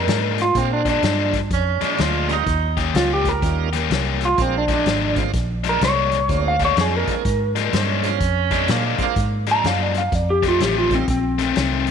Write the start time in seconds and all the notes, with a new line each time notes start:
Already playing: A#4
0.07 G#2 A#2 F3 G#3 D4, snare, closed hi-hat
0.38 F4, snare, closed hi-hat
0.55 A#2 G#3 A#3 C4 D4 F4, kick, snare, closed hi-hat
0.73 D4
0.85 A#2 F3 G#3 D4, kick, snare, closed hi-hat
0.89 D4
1.02 G2 A#2 F3 G#3 D4, snare, closed hi-hat
1.33 kick, snare, closed hi-hat
1.51 F2 C#4, kick, snare, closed hi-hat
1.81 A#2 F3 G#3 D4, muted fingered electric bass stroke, snare, closed hi-hat
1.98 D2 A#2 F3 G#3 D4 F4, snare, closed hi-hat
2.28 G3 A#3 C#4 D#4 F4, snare, closed hi-hat
2.33 D#4
2.46 D#2, kick, snare, closed hi-hat
2.77 D#3 A#3 C#4 G4, kick, snare, closed hi-hat
2.94 C#2 D#3 A#3 C#4 F4 G4, snare, closed hi-hat
3.13 G4
3.25 A#4, kick, snare, closed hi-hat
3.42 D#2 G3 A#3 C#4 D#4 F4, kick, snare, closed hi-hat
3.73 D#3 A#3 C#4 G4, snare, closed hi-hat
3.90 C2 D#3 A#3 C#4 G4, snare, closed hi-hat
4.21 snare, closed hi-hat
4.25 F4
4.37 A#1 G#3 A#3 C4 D4 F4, kick, snare, closed hi-hat
4.42 C4
4.58 D4
4.68 A#2 F3 G#3 D4, kick, snare, closed hi-hat
4.73 D4
4.86 G#1 A#2 F3 G#3 D4, snare, closed hi-hat
5.15 G#3 A#3 C4 D4 F4, kick, snare, closed hi-hat
5.33 A#1, kick, snare, closed hi-hat
5.64 A#2 F3 G#3 D4, snare, closed hi-hat
5.69 A#4
5.81 C2 A#2 F3 G#3 D4 C#5, snare, closed hi-hat
6.11 snare, closed hi-hat
6.28 D2 G#3 A#3 C4 D4 F4, kick, snare, closed hi-hat
6.48 F5
6.59 A#2 F3 G#3 D4, kick, snare, closed hi-hat
6.65 C#5
6.77 F2 A#2 F3 G#3 D4, snare, closed hi-hat
6.81 G#4
6.97 A#4
7.07 G#3 A#3 C4 D4 G#4, muted fingered electric bass stroke, kick, snare, closed hi-hat
7.25 G#2, kick, snare, closed hi-hat
7.55 A#2 F3 G#3 D4, snare, closed hi-hat
7.73 G2 A#2 F3 G#3 C#4 D4, snare, closed hi-hat
8.03 G#3 A#3 C4 D4 F4, snare, closed hi-hat
8.20 F2, kick, snare, closed hi-hat
8.51 A#2 F3 G#3 D4, kick, snare, closed hi-hat
8.68 A#2 F3 G#3 A#3 D4, snare, closed hi-hat
8.86 A#3
8.98 G#3 A#3 C4 D4 F4, muted fingered electric bass stroke, kick, snare, closed hi-hat
9.16 G#2, kick, snare, closed hi-hat
9.46 A#2 F3 G#3 D4, snare, closed hi-hat
9.51 A#5
9.64 F#2 A#2 F3 G#3 D4 F5, snare, closed hi-hat
9.82 D5
9.94 F5, snare, closed hi-hat
10.12 F2 D5, kick, snare, closed hi-hat
10.30 G4
10.43 F2 D#3 A3 C4, kick, snare, closed hi-hat
10.48 F4
10.60 A1 F2 D#3 A3 C4 G4, snare, closed hi-hat
10.78 F4
10.90 G3 A3 C4 D#4 F4, kick, snare, closed hi-hat
10.94 C4
11.08 A#1 C4, kick, snare, closed hi-hat
11.38 F2 D#3 A3 C4, snare, closed hi-hat
11.55 C2 F2 D#3 A3 C4, snare, closed hi-hat
11.87 closed hi-hat